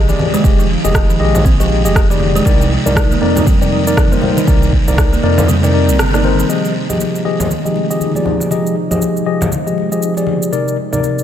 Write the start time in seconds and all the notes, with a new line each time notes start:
Already playing: A#1 C3 D#3 F3 G#3 D#4
0.08 D#3 G4 G#4 D5, muted conga, high conga, cabasa
0.19 low conga
0.34 G#3, high conga, cabasa
0.44 F1 F3 G4 G#4 D#5, kick, muted conga, cabasa
0.59 F3, cabasa
0.84 F1 G4 G#4 D#5, low conga, cabasa
0.94 kick, cross-stick, muted conga, cabasa
1.09 D#3, cabasa
1.20 A#1 D#3 G4 G#4 D#5
1.35 muted conga, high conga, low conga, cabasa
1.45 C4, kick, high conga, cabasa
1.60 F3 G4 G#4 D#5, cabasa
1.69 muted conga
1.85 F1 G4 G#4 D#5, cabasa
1.95 kick, cross-stick, cabasa
2.10 D#3 G4 G#4 D5, muted conga, cabasa
2.20 high conga
2.36 G#3, cabasa
2.45 C2 C3 G3 A#3 D#4 A#4 D5, kick, muted conga, cabasa
2.61 C3, cabasa
2.86 C2 D#4 A#4 D5, low conga, cabasa
2.96 kick, cross-stick, muted conga, cabasa
3.11 A#3, cabasa
3.21 F2 A#3 D#4 A#4 D5
3.36 muted conga, high conga, low conga, cabasa
3.46 G3, kick, cabasa
3.61 C3 D#4 A#4 D5, cabasa
3.72 muted conga
3.87 D#4 A#4 D5, cabasa
3.97 kick, cross-stick, high conga, cabasa
4.12 A#3 D#4 A#4 C5, muted conga, high conga, cabasa
4.22 low conga
4.37 D#3, high conga, cabasa
4.47 C2 C3 C4 D#4 A#4 D5, kick, muted conga, cabasa
4.62 C3, cabasa
4.73 kick
4.88 C2 D#4 A#4 D5, low conga, cabasa
4.98 kick, cross-stick, muted conga, cabasa
5.13 A#3, cabasa
5.23 F2 A#3 D#4 A#4 D5
5.38 muted conga, high conga, low conga, cabasa
5.48 G3, high conga, cabasa
5.63 C3 D#4 A#4 D5, cabasa
5.73 D#4 A#4 D5, muted conga
5.88 C2, high conga, cabasa
5.99 G1, cross-stick, cabasa
6.14 A#3 D#4 A#4 D5, cross-stick, muted conga, cabasa
6.24 D#4 A#4 C5, high conga
6.39 D#3, cabasa
6.49 C3 D#3 F3 G#3 D#4 G4 G#4 D#5, muted conga, cabasa
6.65 cabasa
6.90 F3 G4 G#4 D#5, low conga, cabasa
7.00 muted conga, cabasa
7.15 cabasa
7.25 F3 G4 G#4 D#5
7.40 muted conga, high conga, low conga, cabasa
7.51 cabasa
7.65 F3 G4 G#4 D#5, cabasa
7.76 muted conga
7.90 F3 G4 G#4 D#5, cabasa
8.01 high conga, cabasa
8.14 F3 G4 G#4 D5, muted conga, high conga, cabasa
8.25 low conga
8.40 high conga, cabasa
8.51 F3 G4 G#4 D#5, muted conga, cabasa
8.66 cabasa
8.91 F3 G4 G#4 D#5, low conga, cabasa
9.01 muted conga, cabasa
9.17 cabasa
9.26 F3 G4 G#4 D#5
9.41 muted conga, high conga, low conga, cabasa
9.52 high conga, cabasa
9.66 F3 G4 G#4 D#5, cabasa
9.78 muted conga
9.92 F3 G4 G#4 D#5, cabasa
10.02 cabasa
10.17 F3 G4 G#4 D5, muted conga, cabasa
10.27 high conga
10.43 cabasa
10.52 C3 G3 A#3 D#4 A#4 D5, muted conga, cabasa
10.68 cabasa
10.93 C3 D#4 A#4 D5, low conga, cabasa
11.03 muted conga, cabasa
11.19 cabasa